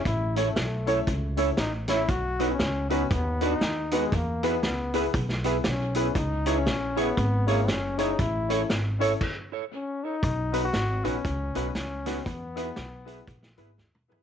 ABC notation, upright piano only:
X:1
M:4/4
L:1/8
Q:"Swing" 1/4=118
K:B
V:1 name="Upright piano"
z [CE=Ac] z [CEAc] z [CEAc] z [CEAc] | z [B,DFB] z [B,DFB] z [B,DFB] z [B,DFB] | z [B,EGB] z [B,EGB] z [B,EGB] z [B,EGB] | z [CEGc] z [CEGc] z [CEGc] z [CEGc] |
z [CE=Ac] z [CEAc] z4 | z [B,DFB] z [B,DFB] z [B,DFB] z [B,DFB] | z [B,EGB] z [B,EGB] z [B,EGB] z [B,EGB] |]